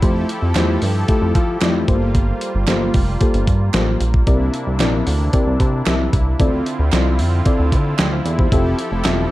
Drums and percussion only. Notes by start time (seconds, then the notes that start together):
0.02 kick, closed hi-hat
0.29 closed hi-hat
0.55 snare, clap, closed hi-hat
0.82 open hi-hat
1.08 kick, closed hi-hat
1.35 kick, closed hi-hat
1.61 snare, clap, closed hi-hat
1.88 kick, closed hi-hat
2.15 kick, closed hi-hat
2.41 closed hi-hat
2.67 snare, clap, closed hi-hat
2.94 kick, open hi-hat
3.21 kick, closed hi-hat
3.34 closed hi-hat
3.47 kick, closed hi-hat
3.74 snare, clap, closed hi-hat
4.01 closed hi-hat
4.14 kick
4.27 kick, closed hi-hat
4.54 closed hi-hat
4.80 snare, clap, closed hi-hat
5.07 open hi-hat
5.33 kick, closed hi-hat
5.60 kick, closed hi-hat
5.86 snare, clap, closed hi-hat
6.13 kick, closed hi-hat
6.40 kick, closed hi-hat
6.66 closed hi-hat
6.92 snare, clap, closed hi-hat
7.19 open hi-hat
7.46 kick, closed hi-hat
7.72 kick, closed hi-hat
7.99 snare, clap, closed hi-hat
8.26 closed hi-hat
8.39 kick
8.52 kick, closed hi-hat
8.79 closed hi-hat
9.05 snare, clap, closed hi-hat